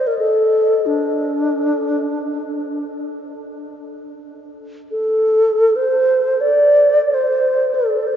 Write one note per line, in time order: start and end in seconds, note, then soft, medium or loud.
0.07 0.18 A#4 medium
0.19 0.87 A4 medium
0.86 3.03 D4 medium
4.91 5.77 A4 medium
5.76 6.42 C5 medium
6.41 7.15 D5 medium
7.14 7.76 C5 medium
7.74 8.09 A4 medium
8.07 8.16 C5 soft